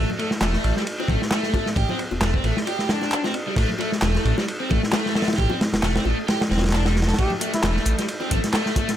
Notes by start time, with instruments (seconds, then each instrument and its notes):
0.10 low conga
0.19 overdriven electric guitar A3, ride, high bongo
0.31 snare
0.41 detuned saw bass E1, overdriven electric guitar A3, snare, clap, ride, high bongo
0.53 snare
0.64 detuned saw bass A1, ride
0.77 overdriven electric guitar G3, snare, high bongo
0.87 ride
1.00 overdriven electric guitar C4, high bongo
1.08 detuned saw bass A1, overdriven electric guitar A3, kick, ride, high conga, low conga
1.22 snare
1.31 overdriven electric guitar A3, snare, clap, ride, high bongo
1.43 snare
1.54 overdriven electric guitar A3, kick, ride, high bongo, high conga
1.66 snare
1.76 detuned saw bass A1, overdriven electric guitar G4, kick, ride
1.89 overdriven electric guitar C4, high bongo, high conga, low conga
1.99 ride
2.11 detuned saw bass E1, high bongo, high conga
2.21 detuned saw bass E1, overdriven electric guitar A3, snare, clap, ride
2.34 overdriven electric guitar C4, kick
2.44 detuned saw bass A1, overdriven electric guitar A3, ride, high bongo, high conga
2.57 snare
2.67 overdriven electric guitar G4, ride, high bongo
2.79 snare
2.89 overdriven electric guitar D4, snare, ride, low conga
3.01 snare, high bongo
3.12 clap, ride
3.24 overdriven electric guitar C4, snare, high bongo
3.34 ride
3.47 overdriven electric guitar G3
3.56 detuned saw bass A1, overdriven electric guitar A3, kick, ride, high bongo
3.69 low conga
3.79 overdriven electric guitar A3, ride, high bongo
3.92 snare
4.02 detuned saw bass E1, overdriven electric guitar A3, snare, clap, ride
4.15 snare, high bongo
4.25 detuned saw bass A1, ride
4.38 overdriven electric guitar G3, snare, high bongo
4.48 ride
4.60 overdriven electric guitar C4
4.69 detuned saw bass A1, overdriven electric guitar A3, kick, ride, high bongo, high conga, low conga
4.83 snare
4.92 overdriven electric guitar A3, snare, clap, ride, high bongo
5.06 snare
5.15 overdriven electric guitar A3, snare, ride, high conga
5.22 snare, ride
5.28 snare, ride, high bongo
5.33 snare, ride
5.38 detuned saw bass A1, overdriven electric guitar G4, kick, ride
5.50 overdriven electric guitar C4, high bongo, high conga, low conga
5.61 snare, ride
5.73 detuned saw bass E1, snare, ride, high conga
5.83 detuned saw bass E1, overdriven electric guitar A3, snare, clap, ride, high bongo
5.95 overdriven electric guitar C4, snare, ride
6.05 detuned saw bass A1, overdriven electric guitar A3, high bongo, high conga
6.28 overdriven electric guitar G4, snare, ride
6.40 snare, ride, high bongo
6.49 detuned saw bass E1, overdriven electric guitar C4, snare, ride, low conga
6.58 snare, ride
6.62 snare, ride, high bongo
6.68 snare, ride
6.73 overdriven electric guitar D4, snare, clap, ride
6.86 overdriven electric guitar G3, snare, ride
6.95 snare, ride, high bongo
7.02 snare, ride
7.08 overdriven electric guitar A4, snare, ride
7.14 snare, ride
7.18 detuned saw bass A1, overdriven electric guitar A3, muted trumpet G4, kick, closed hi-hat, ride
7.30 low conga
7.40 overdriven electric guitar A3, closed hi-hat, ride, high bongo
7.54 muted trumpet E4, snare, closed hi-hat
7.63 detuned saw bass E1, overdriven electric guitar A3, muted trumpet E4, snare, clap, closed hi-hat, ride, high bongo
7.76 snare
7.85 detuned saw bass A1, closed hi-hat, ride
7.98 overdriven electric guitar G3, snare, closed hi-hat, high bongo
8.08 closed hi-hat, ride
8.21 overdriven electric guitar C4, high bongo
8.31 detuned saw bass A1, overdriven electric guitar A3, kick, closed hi-hat, ride, high conga, low conga
8.44 snare, closed hi-hat
8.53 overdriven electric guitar A3, snare, clap, closed hi-hat, ride, high bongo
8.66 snare
8.76 overdriven electric guitar A3, kick, closed hi-hat, ride, high bongo, high conga
8.88 snare, closed hi-hat